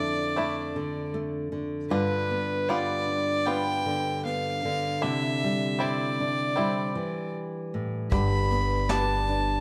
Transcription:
Already playing: nylon-string guitar F2 D3 A3 E4, five-string banjo F3 A3 D4 E4, fiddle D5
0.00 nylon-string guitar D4
0.36 five-string banjo A3 D4 E4, nylon-string guitar A3
0.76 nylon-string guitar D3
1.14 nylon-string guitar A3
1.52 nylon-string guitar D3
1.90 nylon-string guitar G2 F4, five-string banjo D3, fiddle B4
2.30 nylon-string guitar B3
2.69 five-string banjo G3 B3 F4, nylon-string guitar F4, fiddle D5
3.08 nylon-string guitar D4
3.46 five-string banjo G3 B3 F4, nylon-string guitar B3, fiddle G5
3.86 nylon-string guitar D3
4.25 nylon-string guitar B3, fiddle F5
4.65 nylon-string guitar D3
5.02 nylon-string guitar C3 E4, five-string banjo D3, fiddle E5
5.44 nylon-string guitar G3
5.79 five-string banjo G3 C4 E4, nylon-string guitar E4, fiddle D5
6.20 nylon-string guitar D4
6.56 five-string banjo G3 C4 E4, nylon-string guitar G3
6.95 nylon-string guitar E3
7.74 nylon-string guitar A2
8.10 upright bass G1, nylon-string guitar G2 G4, five-string banjo D3, fiddle B5, kick, closed hi-hat
8.51 nylon-string guitar B3, closed hi-hat
8.89 five-string banjo G3 B3 D4, nylon-string guitar G4, fiddle A5, snare, closed hi-hat
9.27 nylon-string guitar D4, closed hi-hat

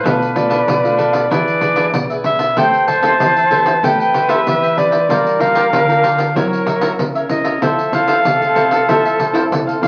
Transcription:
Already playing: clarinet B4
0.03 nylon-string guitar B2 A3 D4 F4, cavaquinho D4 A4 B4 F5, flute B4, pandeiro
0.22 pandeiro
0.35 nylon-string guitar A3 D4 F4, cavaquinho D4 A4 B4 F5, clarinet D5, pandeiro
0.49 cavaquinho D4 A4 B4 F5, pandeiro
0.68 nylon-string guitar B2, pandeiro
0.83 nylon-string guitar A3 D4 F4, cavaquinho A4 B4 F5, pandeiro
0.97 cavaquinho D4 A4 B4 F5, pandeiro
1.12 cavaquinho A4 B4 F5, pandeiro
1.30 nylon-string guitar E3 D4 G#4 B4, cavaquinho D4 G#4 B4 E5, clarinet B4, flute D5, pandeiro
1.48 pandeiro
1.61 cavaquinho D4 G#4 B4 E5, pandeiro
1.76 cavaquinho D4 G#4 B4 E5, nylon-string guitar D4 G#4 B4, pandeiro
1.94 nylon-string guitar B2, pandeiro
2.10 cavaquinho G#4 B4 E5, pandeiro
2.24 nylon-string guitar D4 G#4 B4, clarinet E5, pandeiro
2.39 cavaquinho G#4 B4 E5, pandeiro
2.57 nylon-string guitar A3 C4 G4 B4, cavaquinho A4 C5 E5 G5, flute C5, clarinet G5, pandeiro
2.73 pandeiro
2.88 cavaquinho A4 C5 E5 G5, clarinet A5, pandeiro
3.02 nylon-string guitar C4 G4, cavaquinho A4 C5 E5 G5, pandeiro
3.20 nylon-string guitar E3, pandeiro
3.36 cavaquinho C5 E5 G5, pandeiro
3.51 nylon-string guitar C4 G4 B4, cavaquinho A4 C5 E5 G5, pandeiro
3.66 cavaquinho C5 E5 G5, pandeiro
3.83 nylon-string guitar A3 C4 G4 B4, cavaquinho A4 E5 G5, flute B4, clarinet G5, pandeiro
4.00 clarinet G5, pandeiro
4.14 cavaquinho A4 C5 E5 G5, pandeiro
4.28 nylon-string guitar C4 G4 B4, cavaquinho A4 C5 E5 G5, clarinet E5, pandeiro
4.46 nylon-string guitar E3, clarinet E5, pandeiro
4.62 cavaquinho E5 G5, pandeiro
4.77 nylon-string guitar C4 G4 B4, clarinet D5, pandeiro
4.91 cavaquinho C5 E5 G5, pandeiro
5.09 nylon-string guitar G3 D4 F4 A#4, cavaquinho F4 A#4 D5 G5, flute A#4, pandeiro
5.26 pandeiro
5.39 nylon-string guitar D4 F4 A#4, cavaquinho F4 A#4 D5 G5, clarinet F5, pandeiro
5.54 cavaquinho F4 A#4 D5 G5, pandeiro
5.72 nylon-string guitar D3, pandeiro
5.88 nylon-string guitar D4 F4 A#4, cavaquinho A#4 D5 G5, pandeiro
6.02 cavaquinho F4 A#4 D5 G5, pandeiro
6.18 cavaquinho A#4 D5 G5, pandeiro
6.35 nylon-string guitar F#3 C4 E4 A#4, cavaquinho F#4 A#4 C#5 E5, flute A#4, clarinet C#5, pandeiro
6.53 pandeiro
6.66 cavaquinho F#4 A#4 C#5 E5, pandeiro
6.81 nylon-string guitar C4 E4 A#4, cavaquinho F#4 A#4 C#5 E5, pandeiro
6.99 nylon-string guitar C#3, pandeiro
7.15 cavaquinho A#4 C#5 E5, pandeiro
7.29 nylon-string guitar C4 E4 A#4, clarinet D#5, pandeiro
7.44 cavaquinho A#4 C#5 E5, pandeiro
7.62 nylon-string guitar F3 C4 E4 A4, cavaquinho A4 C5, flute A4, clarinet E5, pandeiro
7.79 pandeiro
7.92 nylon-string guitar C4 E4 A4, cavaquinho E4 A4 C5 F5, clarinet F5, pandeiro
8.07 cavaquinho E4 A4 C5 F5, pandeiro
8.25 nylon-string guitar C3, pandeiro
8.41 nylon-string guitar C4 A4, cavaquinho A4 C5 F5, pandeiro
8.55 cavaquinho E4 A4 C5 F5, pandeiro
8.70 cavaquinho A4 C5 F5, pandeiro
8.87 nylon-string guitar F3 C4 E4 A4, cavaquinho A4 C5 F5, clarinet E5, pandeiro
9.05 clarinet E5, pandeiro
9.18 cavaquinho E4 A4 C5 F5, pandeiro
9.33 nylon-string guitar C4 E4 A4, cavaquinho E4 A4 C5 F5, pandeiro
9.51 nylon-string guitar C3, pandeiro
9.67 cavaquinho A4 C5 F5, pandeiro
9.81 nylon-string guitar C4 E4 A4, clarinet F5, pandeiro

